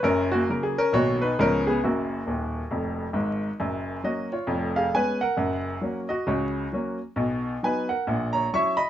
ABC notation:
X:1
M:4/4
L:1/16
Q:"Swing" 1/4=135
K:F#
V:1 name="Upright piano"
[CA]2 [A,F]2 A G [CA]2 [Fc]2 [DB]2 [CA]2 [B,G]2 | [A,F]12- [A,F]2 z2 | z4 [Fd]2 [Ec]4 [Ge]2 [Bg]2 [Af]2- | [Af]6 [Fd]2 [Fc]6 z2 |
z4 [Bg]2 [Af]4 [ca]2 [=ec']2 [db]2 |]
V:2 name="Upright piano" clef=bass
[F,,,F,,]4 [C,F,A,]4 [B,,,B,,D,F,A,]4 [C,,C,E,B,]4 | [F,,,F,,]4 [D,,,D,,]4 [E,,,E,,]4 [G,,,G,,]4 | [F,,,F,,]4 [F,A,C]4 [E,,,E,,]4 [G,B,C]4 | [F,,,F,,]4 [F,A,C]4 [C,,C,]4 [F,A,C]4 |
[B,,,B,,]4 [F,B,D]4 [A,,,A,,]4 [F,C=E]4 |]